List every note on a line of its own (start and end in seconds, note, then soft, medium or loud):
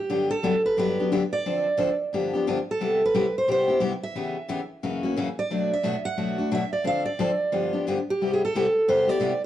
0.00 0.30 G4 medium
0.10 0.30 G2 medium
0.10 0.30 D3 medium
0.10 0.30 F#3 medium
0.10 0.30 B3 medium
0.10 0.30 D4 medium
0.10 0.30 G4 medium
0.31 0.62 A4 medium
0.43 0.54 G2 medium
0.43 0.54 D3 medium
0.43 0.55 F#3 medium
0.43 0.54 B3 medium
0.43 0.54 D4 loud
0.43 0.55 G4 medium
0.66 0.77 B4 medium
0.77 0.97 G2 medium
0.77 0.97 D3 medium
0.77 0.97 F#3 medium
0.77 0.97 B3 medium
0.77 0.97 D4 medium
0.77 0.97 G4 medium
0.77 1.10 B4 medium
0.99 1.11 F#3 soft
0.99 1.11 B3 soft
0.99 1.11 D4 soft
0.99 1.11 G4 medium
1.12 1.22 G2 medium
1.12 1.22 D3 medium
1.12 1.22 F#3 medium
1.12 1.23 B3 medium
1.12 1.22 D4 medium
1.12 1.23 G4 medium
1.33 1.96 D5 medium
1.46 1.66 D3 medium
1.46 1.66 F3 medium
1.46 1.66 C4 medium
1.46 1.66 D4 medium
1.46 1.66 A4 medium
1.77 1.89 D3 medium
1.77 1.89 F3 medium
1.77 1.89 C4 loud
1.77 1.89 D4 medium
1.77 1.89 A4 medium
2.13 2.32 G2 medium
2.13 2.33 D3 medium
2.13 2.33 F3 medium
2.13 2.33 B3 medium
2.13 2.33 D4 medium
2.13 2.32 G4 medium
2.33 2.47 F3 soft
2.33 2.46 B3 medium
2.33 2.46 D4 medium
2.33 2.46 G4 medium
2.47 2.58 G2 medium
2.47 2.58 D3 medium
2.47 2.58 F3 medium
2.47 2.58 B3 medium
2.47 2.58 D4 medium
2.47 2.58 G4 medium
2.71 3.04 A4 medium
2.81 3.01 C3 medium
2.81 3.01 G3 medium
2.81 3.01 B3 medium
2.81 3.01 E4 medium
2.81 3.01 G4 medium
3.06 3.38 B4 medium
3.14 3.25 C3 medium
3.14 3.25 G3 medium
3.14 3.25 B3 medium
3.14 3.26 E4 medium
3.14 3.25 G4 medium
3.38 3.48 C5 medium
3.48 3.67 C3 medium
3.48 3.68 G3 medium
3.48 3.68 B3 medium
3.48 3.68 E4 medium
3.48 3.67 G4 medium
3.48 3.81 C5 medium
3.68 3.79 B3 soft
3.68 3.80 E4 medium
3.68 3.80 G4 medium
3.80 3.92 C3 medium
3.80 3.92 G3 medium
3.80 3.92 B3 medium
3.80 3.92 E4 medium
3.80 3.92 G4 medium
4.03 4.66 E5 medium
4.15 4.36 C#3 medium
4.15 4.36 E3 medium
4.15 4.36 B3 medium
4.15 4.36 C#4 medium
4.15 4.36 G4 medium
4.48 4.60 C#3 medium
4.48 4.60 E3 medium
4.48 4.60 B3 medium
4.48 4.60 C#4 medium
4.48 4.60 G4 loud
4.83 5.03 F#2 medium
4.83 5.03 C#3 medium
4.83 5.02 E3 medium
4.83 5.03 A#3 medium
4.83 5.03 C#4 medium
4.83 5.02 F#4 medium
5.03 5.16 E3 soft
5.03 5.16 A#3 medium
5.03 5.16 C#4 medium
5.03 5.15 F#4 medium
5.16 5.27 F#2 medium
5.16 5.28 C#3 medium
5.16 5.28 E3 medium
5.16 5.28 A#3 medium
5.16 5.28 C#4 medium
5.16 5.28 F#4 medium
5.39 5.69 D5 medium
5.50 5.71 B2 medium
5.50 5.71 F#3 medium
5.50 5.71 A3 medium
5.50 5.71 D4 medium
5.50 5.71 F#4 medium
5.73 6.05 E5 medium
5.83 5.94 B2 medium
5.83 5.95 F#3 medium
5.83 5.95 A3 medium
5.83 5.95 D4 loud
5.83 5.95 F#4 medium
6.05 6.48 F#5 loud
6.18 6.37 B2 medium
6.18 6.37 F#3 medium
6.18 6.37 A3 medium
6.18 6.37 D4 medium
6.18 6.37 F#4 medium
6.38 6.50 A3 soft
6.38 6.51 D4 medium
6.38 6.50 F#4 medium
6.51 6.62 B2 medium
6.51 6.62 F#3 medium
6.51 6.62 A3 medium
6.51 6.62 D4 medium
6.51 6.63 F#4 medium
6.51 6.72 E5 medium
6.73 6.84 D5 medium
6.84 7.05 D3 medium
6.84 7.05 F3 medium
6.84 7.05 C4 medium
6.84 7.05 D4 medium
6.84 7.06 A4 medium
6.84 7.05 F5 medium
7.05 7.69 D5 medium
7.19 7.30 D3 medium
7.19 7.30 F3 medium
7.19 7.30 C4 medium
7.19 7.30 D4 medium
7.19 7.30 A4 loud
7.52 7.72 G2 medium
7.52 7.72 D3 medium
7.52 7.72 F3 medium
7.52 7.72 B3 medium
7.52 7.72 D4 medium
7.52 7.72 G4 medium
7.73 7.86 F3 soft
7.73 7.86 B3 soft
7.73 7.86 D4 soft
7.73 7.85 G4 medium
7.87 7.97 G2 medium
7.87 7.98 D3 medium
7.87 7.98 F3 medium
7.87 7.98 B3 medium
7.87 7.98 D4 medium
7.87 7.98 G4 medium
8.10 8.32 G4 medium
8.21 8.41 C3 medium
8.21 8.41 G3 medium
8.21 8.41 B3 medium
8.21 8.42 E4 medium
8.21 8.41 G4 medium
8.34 8.41 G#4 medium
8.45 8.91 A4 medium
8.55 8.65 C3 medium
8.55 8.66 G3 medium
8.55 8.65 B3 medium
8.55 8.66 E4 medium
8.55 8.66 G4 loud
8.88 9.07 C3 medium
8.88 9.08 G3 medium
8.88 9.08 B3 medium
8.88 9.07 E4 medium
8.88 9.07 G4 medium
8.88 9.09 C5 medium
9.08 9.20 B3 soft
9.08 9.20 E4 soft
9.08 9.20 G4 medium
9.08 9.43 D5 medium
9.20 9.31 C3 medium
9.20 9.32 G3 medium
9.20 9.32 B3 medium
9.20 9.32 E4 loud
9.20 9.32 G4 medium